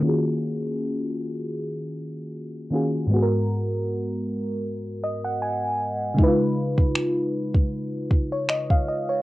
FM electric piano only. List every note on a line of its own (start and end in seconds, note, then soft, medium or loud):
0.00 2.66 D#3 medium
0.00 2.67 A#3 medium
0.00 2.68 C#4 medium
0.04 2.69 F4 medium
0.04 2.70 F#4 medium
0.04 2.71 G#4 medium
2.70 3.10 D#3 medium
2.70 3.10 A#3 soft
2.70 3.11 C#4 soft
2.70 3.11 F4 soft
2.70 3.12 F#4 soft
2.75 3.12 G#4 medium
3.07 6.12 G#2 medium
3.07 6.14 G#3 medium
3.11 6.15 B3 medium
3.11 6.16 F#4 medium
3.16 3.20 G#4 medium
3.22 6.20 A#4 medium
5.03 5.23 D#5 medium
5.24 5.41 F#5 medium
5.42 6.15 G#5 medium
6.14 9.20 C#3 medium
6.14 9.21 G#3 medium
6.19 9.22 D#4 medium
6.19 6.27 E4 medium
6.23 9.22 B4 medium
6.28 9.22 F4 medium
8.32 8.49 C#5 medium
8.50 8.69 D#5 medium
8.71 8.87 F5 medium
8.88 9.08 D#5 medium
9.09 9.22 C#5 medium